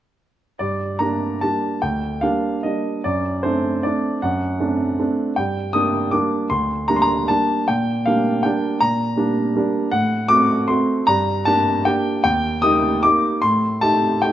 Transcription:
0.59 G2 D5
0.99 G3 A#3 D4 A#5
1.41 G3 A#3 D4 A5
1.82 D2 G5
2.21 G3 A#3 D4 F5
2.63 G3 A#3 D4 D#5
3.04 F#2 D5
3.43 A3 C4 D4 C5
3.83 A3 C4 D4 D5
4.22 F#2 F#5
4.60 A3 C4 D4
4.99 A3 C4 D4
5.36 G2 G5
5.73 G3 A#3 D4 D#6
6.11 G3 A#3 D4 D6
6.50 D2 C6
6.88 G3 A#3 D4 A#5
6.96 C6
7.02 A#5
7.28 G3 A#3 D4 A5
7.68 A#2 G5
8.06 G3 A#3 D4 F5
8.43 G3 A#3 D4 G5
8.81 A#2 A#5
9.17 G3 A#3 D4
9.56 G3 A#3 D4
9.91 A2 F#5
10.28 A3 C4 F#4 D6
10.68 A3 C4 F#4 C6
11.07 G2 A#5
11.45 A#3 D4 G4 A5
11.85 A#3 D4 G4 G5
12.24 D#2 G5
12.62 A#3 D#4 G4 D#6
13.03 A#3 D#4 G4 D6
13.42 A2 C6
13.81 A3 D#4 G4 A5
14.22 A3 D#4 G4 G5

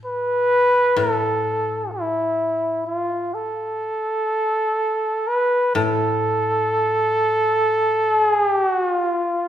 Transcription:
Already playing: A2
0.05 B4
0.96 A2 A4
1.91 E4
2.87 F4
3.34 A4
5.28 B4
5.75 A2 A4
8.13 G#4
8.44 G4
8.75 F#4
9.06 F4

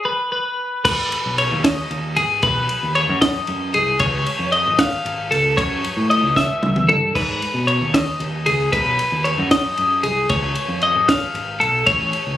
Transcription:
0.05 B4
0.32 B4
0.85 G#1 B4, kick, crash
1.12 ride
1.26 B1
1.38 C#5, ride
1.51 D#2
1.64 D#5, kick, snare, ride
1.91 D#2, ride
2.16 G#1 G#4, ride
2.43 B1 B4, kick, ride
2.69 ride
2.83 D#2
2.95 C#5, ride
3.09 F#2
3.21 D#5, kick, snare, ride
3.47 F#2, ride
3.74 C2 G#4, ride
3.99 C#2 C#5, kick, ride
4.26 ride
4.39 F2
4.52 D#5, ride
4.66 G#1
4.79 F5, kick, snare, ride
5.05 G#1, ride
5.31 C#2 A4, ride
5.57 F#2 C#5, kick, ride
5.84 ride
5.97 A2
6.10 D#5, ride
6.22 C#2
6.36 E5, kick, snare
6.62 C#2, high tom
6.76 mid tom
6.88 G2 A4, mid tom
7.15 G#2 B4, kick, crash
7.42 ride
7.54 B2
7.67 C#5, ride
7.81 D#2
7.94 D#5, kick, snare, ride
8.20 D#2, ride
8.46 C#2 G#4, ride
8.72 B1 B4, kick, ride
8.99 ride
9.12 D#2
9.24 C#5, ride
9.38 F#2
9.51 D#5, kick, snare, ride
9.77 F#2, ride
10.03 C2 G#4, ride
10.29 C#2 C#5, kick, ride
10.55 ride
10.68 F2
10.82 D#5, ride
10.95 G#1
11.08 F5, kick, snare, ride
11.34 G#1, ride
11.60 B1 A4, ride
11.87 A1 C#5, kick, ride
12.13 ride
12.27 C#2

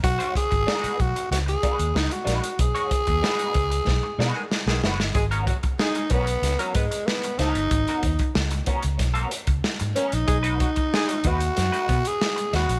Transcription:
0.03 B1 F#4, muted clean electric guitar stroke, kick, closed hi-hat
0.19 G#3 D#4 F#4 C#5, closed hi-hat
0.35 G#4, muted clean electric guitar stroke, kick, closed hi-hat
0.50 G#1, muted clean electric guitar stroke, kick, closed hi-hat
0.67 G3 D4 F4 A#4, snare
0.79 G#3 D#4 F#4 B4
0.84 muted fingered electric bass stroke, closed hi-hat
1.00 B1 F#4, muted clean electric guitar stroke, kick, closed hi-hat
1.16 muted clean electric guitar stroke, closed hi-hat
1.31 C#2 F#4, muted clean electric guitar stroke, snare, closed hi-hat
1.46 G#4, muted clean electric guitar stroke, closed hi-hat
1.63 G#3 D#4 F#4 B4, kick, closed hi-hat
1.78 D#2, muted clean electric guitar stroke, closed hi-hat
1.94 C#2 D#4, muted clean electric guitar stroke, snare
2.10 F#4, muted clean electric guitar stroke, closed hi-hat
2.24 A#1 G#3 D#4 F#4 B4, snare, closed hi-hat
2.43 muted clean electric guitar stroke, closed hi-hat
2.59 B1 G#4, muted clean electric guitar stroke, kick, closed hi-hat
2.75 G#3 D#4 F#4 C#5, closed hi-hat
2.91 muted clean electric guitar stroke, kick, closed hi-hat
3.07 D#2, muted clean electric guitar stroke, kick, closed hi-hat
3.22 G#3 D#4 F#4 B4, snare
3.39 closed hi-hat
3.54 C#2, muted clean electric guitar stroke, kick, closed hi-hat
3.71 muted clean electric guitar stroke, closed hi-hat
3.87 B1, muted clean electric guitar stroke, kick, snare
4.03 muted clean electric guitar stroke
4.19 B2 G#3 D#4 F#4 B4, snare
4.34 D#3 B3 G#4, muted clean electric guitar stroke
4.51 muted clean electric guitar stroke, snare
4.66 B1 D#3 B3 G#4, muted clean electric guitar stroke, snare
4.83 F#1 G#3 D#4 F#4 B4, snare
4.99 G1, muted clean electric guitar stroke, snare
5.14 G#1 G#3 G#4, muted clean electric guitar stroke, kick, closed hi-hat
5.31 B3 C#4 F#4 A#4, closed hi-hat
5.47 F#3 F#4, muted clean electric guitar stroke, kick, closed hi-hat
5.63 muted clean electric guitar stroke, kick, closed hi-hat
5.79 G#3 D#4 G#4, snare
5.95 muted clean electric guitar stroke, closed hi-hat
6.10 B1 B3 C#4 F#4 A#4, kick, closed hi-hat
6.27 muted clean electric guitar stroke, closed hi-hat
6.42 C#2, muted clean electric guitar stroke, snare, closed hi-hat
6.59 F#3 B3 C#4 F#4 A#4, closed hi-hat
6.75 G#2 G#3 B3 B4, muted clean electric guitar stroke, kick, closed hi-hat
6.91 muted clean electric guitar stroke, closed hi-hat
7.07 B3, snare
7.23 muted clean electric guitar stroke, closed hi-hat
7.39 C#2 B3 C#4 D#4 F#4 A#4, snare, closed hi-hat
7.55 G1, muted clean electric guitar stroke, closed hi-hat
7.71 G#1, muted clean electric guitar stroke, kick, closed hi-hat
7.87 B3 C#4 F#4 A#4, closed hi-hat
8.03 D#2, muted clean electric guitar stroke, kick, closed hi-hat
8.19 muted clean electric guitar stroke, kick, closed hi-hat
8.35 C#2, snare
8.51 muted clean electric guitar stroke, closed hi-hat
8.66 B3 C#4 F#4 A#4, kick, closed hi-hat
8.83 C#2, muted clean electric guitar stroke, closed hi-hat
8.98 B1, muted clean electric guitar stroke, kick, snare, closed hi-hat
9.14 B3 C#4 F#4 A#4, closed hi-hat
9.31 muted clean electric guitar stroke, closed hi-hat
9.47 C#2, muted clean electric guitar stroke, kick, closed hi-hat
9.64 snare
9.80 G#2, muted clean electric guitar stroke, closed hi-hat
9.96 B3 C#4 F#4 A#4, closed hi-hat
10.12 A#1 D#4, muted clean electric guitar stroke, closed hi-hat
10.27 B1 G#3 G#4, muted clean electric guitar stroke, kick, closed hi-hat
10.43 G#3 D#4 F#4 B4, closed hi-hat
10.59 F#3 F#4, muted clean electric guitar stroke, kick, closed hi-hat
10.76 muted clean electric guitar stroke, kick, closed hi-hat
10.93 G#3 G#4, snare
11.08 muted clean electric guitar stroke, closed hi-hat
11.24 D#2 G#3 D#4 F#4 B4, kick, closed hi-hat
11.40 muted clean electric guitar stroke, closed hi-hat
11.56 F#2, muted clean electric guitar stroke, snare, closed hi-hat
11.72 G#3 D#4 F#4 B4, closed hi-hat
11.89 B2 B3 B4, muted clean electric guitar stroke, kick, closed hi-hat
12.05 G#4, muted clean electric guitar stroke, closed hi-hat
12.21 snare
12.36 muted clean electric guitar stroke, closed hi-hat
12.53 D#2 G#3 D#4 F#4 B4, snare, closed hi-hat
12.69 A#1, muted clean electric guitar stroke, closed hi-hat

